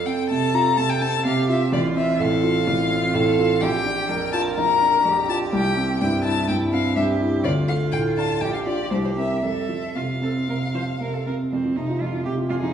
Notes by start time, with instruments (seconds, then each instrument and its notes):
Already playing: grand piano F2, cello A4
0.06 grand piano C4, violin G5
0.30 grand piano C3, violin A5
0.54 grand piano F4, violin A#5
0.77 grand piano C3, violin A5
0.90 violin G5
1.01 grand piano C4, violin A5
1.25 grand piano C3, cello G4, violin F5
1.49 grand piano F4, violin E5
1.72 grand piano A1, cello F4, violin D5
1.96 grand piano C4, violin E5
2.20 grand piano A2, cello A4, violin F5
2.44 grand piano F4
2.67 grand piano A1, cello F4
2.91 grand piano C4
3.14 grand piano A2, cello A4
3.38 grand piano F4, violin F5
3.61 grand piano A#1, cello G4, violin G5
3.85 grand piano D4
4.09 grand piano F2, cello A#4
4.33 grand piano F4, violin A5
4.58 grand piano A#1, violin A#5
4.82 grand piano D4
5.05 grand piano F2, cello G4
5.29 grand piano F4, violin A5
5.53 grand piano C2, violin G5
5.77 grand piano C4
6.01 grand piano G2, cello E4, violin G5
6.25 grand piano E4, violin A5
6.48 grand piano G2, cello E4, violin G5
6.72 grand piano C4, violin F5
6.96 grand piano G2, cello G4, violin E5
7.20 grand piano E4
7.44 grand piano D2, cello F4, violin D5
7.68 grand piano A3, violin F5
7.92 grand piano A2, violin G5
8.17 grand piano D4, violin A5
8.41 grand piano A#1, cello G4, violin G5
8.54 violin F5
8.66 grand piano D4 F4, violin D5
8.91 grand piano C2, cello G4, violin C5
9.04 violin C5
9.16 grand piano C4 A#4, violin E5
9.43 grand piano F2, cello A4, violin E5
9.69 grand piano F3
9.95 grand piano C3, cello F4, violin F5
10.22 grand piano C4, cello A4
10.48 grand piano C3, cello A#4
10.74 grand piano F3, cello C5
11.00 grand piano C3, cello A#4
11.14 cello A4
11.26 grand piano C4, cello A#4
11.51 grand piano F2, cello C4
11.65 grand piano F3
11.76 grand piano C3, cello D#4
11.89 grand piano F4
12.01 grand piano F2, cello F4
12.14 grand piano F3
12.25 grand piano C3, cello G4
12.38 grand piano F4
12.49 grand piano F2, cello F4, violin G#4
12.62 grand piano F3, cello D#4